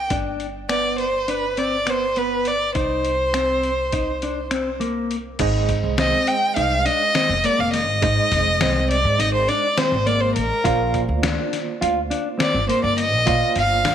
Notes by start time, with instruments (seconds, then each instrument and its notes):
Already playing: violin G5
0.10 upright bass G1, clean electric guitar D4, kick, closed hi-hat
0.40 closed hi-hat
0.69 clean electric guitar B3, violin D5, finger snap, closed hi-hat
0.98 violin C5, closed hi-hat
1.28 clean electric guitar D4, violin B4, closed hi-hat
1.57 clean electric guitar C4, violin D5, closed hi-hat
1.87 clean electric guitar B3, violin C5, finger snap, closed hi-hat
2.16 clean electric guitar B3, violin B4, closed hi-hat
2.45 violin D5, closed hi-hat
2.75 upright bass C2, clean electric guitar D#4, violin C5, kick, closed hi-hat
3.05 closed hi-hat
3.34 clean electric guitar C4, finger snap, closed hi-hat
3.64 closed hi-hat
3.92 clean electric guitar D#4, kick, closed hi-hat
4.22 clean electric guitar D4, closed hi-hat
4.51 clean electric guitar C4, finger snap, closed hi-hat
4.80 clean electric guitar A#3, closed hi-hat
5.11 closed hi-hat
5.39 upright bass G#1, tine electric piano G#3 G#4 C5 D#5, clean electric guitar D#4, kick, closed hi-hat, crash
5.69 kick, closed hi-hat
5.84 upright bass C2
5.98 clean electric guitar C4, violin D#5, snare, closed hi-hat
6.27 violin G5, closed hi-hat
6.56 upright bass C2, clean electric guitar D#4, violin F5, closed hi-hat
6.85 clean electric guitar D4, violin D#5, closed hi-hat
7.15 clean electric guitar C4, snare, closed hi-hat
7.29 upright bass F1
7.44 clean electric guitar A#3, violin D5, closed hi-hat
7.59 upright bass F1, violin F5
7.74 violin D#5, snare, closed hi-hat
7.88 upright bass G#1
8.02 upright bass G#2, tine electric piano G#3 G#4 C5 D#5, clean electric guitar D#4, kick, closed hi-hat
8.32 upright bass F1, kick, snare, closed hi-hat
8.61 upright bass C2, clean electric guitar C4, snare, closed hi-hat
8.91 violin D5, closed hi-hat
9.05 upright bass G#2
9.19 upright bass G#1, clean electric guitar D#4, violin D#5, closed hi-hat
9.35 violin C5
9.49 clean electric guitar D4, violin D5, closed hi-hat
9.77 clean electric guitar C4, violin C5, snare, closed hi-hat
9.92 upright bass G#1
10.06 clean electric guitar A#3, violin D5, closed hi-hat
10.21 violin C5
10.36 upright bass A1, violin A#4, closed hi-hat
10.64 upright bass A#1, tine electric piano A#3 F4 C5 D5, clean electric guitar F4, kick, closed hi-hat
10.94 kick, closed hi-hat
11.09 upright bass D2
11.23 clean electric guitar D4, snare, closed hi-hat
11.53 snare, closed hi-hat
11.81 upright bass D2, clean electric guitar F4, closed hi-hat
12.10 clean electric guitar D4, closed hi-hat
12.39 clean electric guitar C4, violin D5, snare, closed hi-hat
12.54 upright bass G1
12.69 clean electric guitar A#3, violin C5, closed hi-hat
12.84 upright bass G1, violin D5
12.98 violin D#5, closed hi-hat
13.13 upright bass A#1
13.26 upright bass A#2, tine electric piano A#3 F4 C5 D5, clean electric guitar F4, kick, closed hi-hat
13.56 upright bass G1, violin F5, closed hi-hat
13.85 upright bass D2, clean electric guitar D4, snare, closed hi-hat